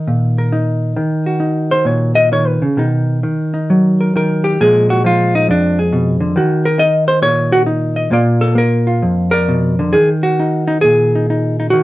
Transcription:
hollow-body jazz guitar
Already playing: D#3 D#4 F#4 A#4
0.07 A#2
0.38 A#4
0.52 D#4
0.96 D#3
1.26 F#4
1.40 D#4
1.71 C5
1.85 A#2 C#5
2.15 D#5
2.32 D#3 C#5
2.47 B4
2.62 C#3 G#4
2.77 B2 D#3 D#4 F#4
3.23 D#3
3.54 D#4
3.70 F#3
4.01 A#4
4.16 D#3 A#4
4.44 G4
4.61 A#2 F3 G#3 G#4
4.90 F#4
5.04 F3 F4
5.35 D#4
5.49 F2 D4
5.79 G#4
5.93 B2
6.20 D3
6.36 D#3 F#4
6.65 A#4
6.78 D#4 D#5
7.08 C5
7.22 A#2 C#5
7.52 F#4
7.66 D#4
7.96 D#5
8.11 A#2 A#3 F4 D5
8.41 A4
8.55 A#3 A#4
8.87 F4
9.02 F2
9.31 A#4 D5
9.48 B2
9.79 D3
9.93 D#3 G#4
10.23 F#4
10.40 D#4
10.68 D#4
10.81 A#2 G#4
11.15 D#4
11.30 D#4
11.60 D#4
11.70 D#3 F#4

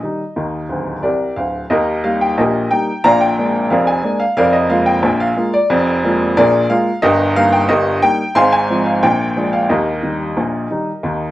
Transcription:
upright piano
Already playing: D#5
0.03 D#3 G3 D#4
0.36 D#2 D#3
0.69 D1 D2
1.03 C2 G4 A#4 D5
1.36 D1 D2 F5
1.70 D#2 D#3 G4 A#4 D#5
2.04 G3 A#3 D#4 F5
2.21 G5
2.38 A#1 A#2 G4 A#4 D#5
2.71 G3 A#3 D#4 G5
3.04 A#1 A#2 D5 F5 A#5
3.21 G5
3.38 G#3 A#3 D4
3.70 F1 F2 A#4 D5 F5
3.87 G#5
4.03 G#3 A#3 D4
4.20 F5
4.37 F1 F2 A#4 D5 F5
4.53 D#5
4.70 G#3 A#3 F4 F5
4.86 G5
5.03 A#1 A#2
5.20 F5
5.37 G#3 A#3 F4
5.53 D5
5.70 F1 F2
6.04 G#3 A#3 F4
6.37 A#1 A#2 G#4 A#4 D5
6.70 G#3 A#3 F4 F5
7.02 G1 G2 G4 A#4 D#5
7.36 G3 A#3 D#4 F5
7.52 G5
7.69 G1 G2 G4 A#4 D#5
8.02 G3 A#3 D#4 G5
8.35 G#1 G#2 F5 G#5 C6
8.52 G#5
8.70 F3 G#3 C4
8.86 F5
9.03 A#1 A#2 G5
9.36 F3 G#3 D4
9.53 F5
9.69 D#2 D#3 G4 A#4 D#5
10.03 D#3 G3 D#4
10.37 A#1 A#2
10.71 D#3 G3 D#4
11.03 D#2 D#3

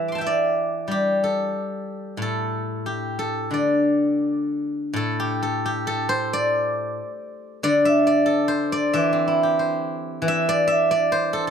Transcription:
guzheng
Already playing: E3 G3 E5
0.08 C6 D6
0.15 G5 A5
0.21 E5
0.27 D5
0.88 G3 G4
1.24 A4
2.17 A2
2.22 A4
2.86 G4
3.19 A4
3.51 D3 D5
4.93 A2 A4
5.20 G4
5.43 A4
5.66 G4
5.87 A4
6.09 C5
6.33 D5
7.63 D3 D5
7.85 E5
8.07 D5
8.26 A4
8.48 C5
8.72 D5
8.94 E3 E5
9.13 C4
9.28 E4
9.43 G4
9.59 C5
10.22 E3
10.28 E5
10.49 D5
10.68 E5
10.91 D5
11.12 C5
11.33 A4

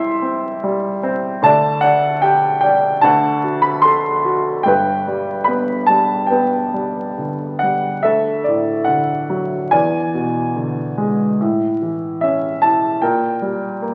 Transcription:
grand piano
Already playing: C2 C3 C4 E4 E5 G5 C6 D6
0.22 C4
0.63 G3
1.03 C4
1.42 D2 D3 D5 A5
1.81 D4 F#5
2.22 G4 G5
2.61 D4 G5
3.01 D2 D3 F#5 A5
3.44 F#4
3.62 B5
3.82 A4 C6
4.25 F#4
4.63 G1 G2 G5
4.68 B4
5.07 G3
5.44 B3 B5
5.86 G3 A5
6.27 B4 G5
6.32 B3
6.74 G3
7.18 D3
7.59 G3 F#5
8.03 D2 A4 E5
8.44 A2 D5
8.84 D3 F#5
9.30 F#3
9.71 E2 D5 G#5
10.14 B2
10.56 D3
10.97 G#3
11.40 A2
11.82 E3
12.21 C#4 E5
12.62 E4 A5
13.02 A#2 A#4 G5
13.42 G3
13.82 A#3

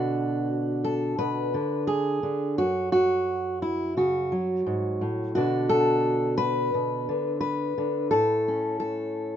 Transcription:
steel-string acoustic guitar
Already playing: B2 D3 D4 F#4
0.84 A4
1.18 B2 B4
1.54 D3
1.87 G#4
2.23 D3
2.58 F#2 F#4
2.92 F#4
3.62 E4
3.97 C#3 F#4
4.32 F#3
4.66 G#2
5.01 A2
5.35 B2 D3 D4 F#4
5.69 A4
6.38 B4
6.74 B2
7.09 D3
7.41 B4
7.78 D3
8.11 A2 A4
8.48 C#4
8.80 A4

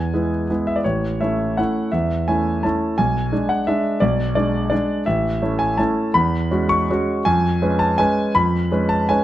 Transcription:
grand piano
Already playing: E2 G#5
0.14 G#3 B3 E4
0.50 G#3 B3 E4
0.67 E5
0.76 D5
0.84 A1 C#5
1.21 A3 C#4 E4 E5
1.57 A3 C#4 E4 F#5
1.92 E2 E5
2.28 A3 C#4 E4 G#5
2.63 A3 C#4 E4 A5
2.98 B1 G#5
3.32 G#3 D4
3.49 F#5
3.67 G#3 D4 E5
4.00 B1 D5
4.35 G#3 D4 D5
4.70 G#3 D4 D5
5.06 A1 E5
5.42 A3 C#4 E4
5.59 G#5
5.78 A3 C#4 E4 A5
6.14 E2 B5
6.51 G#3 C#4 F#4
6.69 C#6
6.90 G#3 C#4 F#4
7.25 F2 G#5
7.62 G#3 C#4 B4
7.79 A5
7.98 G#3 C#4 B4 G#5
8.35 F2 B5
8.72 G#3 C#4 B4
8.89 A5
9.09 G#3 C#4 B4 G#5

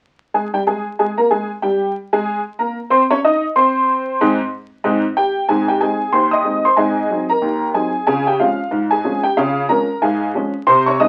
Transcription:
honky-tonk piano
0.34 G#3 G#4 G#5
0.53 G3 G4 G5
0.67 G#3 G#4 G#5
0.99 G#3 G#4 G#5
1.18 A#3 A#4 A#5
1.31 G#3 G#4 G#5
1.62 G3 G4 G5
2.13 G#3 G#4 G#5
2.59 A#3 A#4 A#5
2.90 C4 C5 C6
3.11 C#4 C#5 C#6
3.24 D#4 D#5 D#6
3.56 C4 C5 C6
4.21 G#2 G#3 C4 D#4
4.84 G#2 G#3 C4 D#4
5.17 G4 G5
5.49 G#2 C4 G#4 G#5
5.68 G4 G5
5.81 G#3 C4 D#4 G#4 G#5
6.13 D#2 C5 C6
6.31 D#5 D#6
6.44 G#3 C4 D#4
6.65 C5 C6
6.77 G#2 C4 G#4 D#5 G#5
7.10 F#3 C4 D#4
7.29 A#4 A#5
7.42 D#2
7.74 F#3 C4 D#4 G#4 G#5
8.07 C#3 F4 G#4 G#5
8.27 G4 G5
8.40 F3 G#3 C#4 F4 F5
8.71 G#2
8.91 G#4 G#5
9.04 F3 G#3 C#4
9.24 G4 G5
9.37 C#3 F4 C#5 F5
9.69 F3 G#3 C#4 A#4 A#5
10.02 G#2 G#4 F5 G#5
10.35 F3 G#3 C#4
10.67 C3 C5 C6
10.86 C#5 C#6
11.00 G#3 C4 D#4 D#5 D#6

